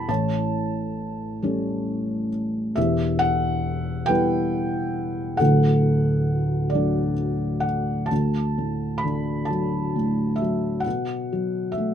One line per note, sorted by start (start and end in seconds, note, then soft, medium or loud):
0.00 0.11 G3 soft
0.00 0.10 B3 soft
0.00 0.10 E4 soft
0.00 0.11 G5 medium
0.00 0.09 A5 medium
0.00 0.10 B5 medium
0.09 2.72 A1 medium
0.09 2.72 A2 medium
0.09 2.29 C#5 medium
0.09 2.28 A5 medium
1.42 2.72 G3 soft
1.42 2.72 A3 soft
1.42 2.73 C#4 medium
2.76 5.36 E1 medium
2.76 5.36 E2 medium
2.76 4.05 G4 medium
2.76 3.22 E5 medium
3.19 4.10 F#5 loud
4.06 5.36 G3 soft
4.06 5.36 B3 soft
4.06 5.36 E4 medium
4.06 5.35 B4 medium
4.06 5.42 G5 loud
5.37 8.07 D1 medium
5.37 8.07 D2 medium
5.37 7.14 A4 medium
5.37 7.13 F#5 medium
6.70 7.65 D5 medium
6.74 8.07 F#3 soft
6.74 8.07 A3 soft
6.74 8.08 D4 medium
7.60 8.10 F#5 medium
8.06 9.04 A5 medium
8.11 10.82 D2 medium
8.58 9.94 A2 soft
8.98 9.48 B5 medium
9.04 10.82 D3 soft
9.45 10.34 A5 medium
9.50 10.40 F#3 soft
9.96 10.83 A2 soft
10.36 10.80 E5 medium
10.42 10.85 F#3 soft
10.80 11.69 F#5 medium
10.86 11.94 B2 medium
11.32 11.94 F#3 soft
11.72 11.94 E5 medium
11.78 11.94 A3 soft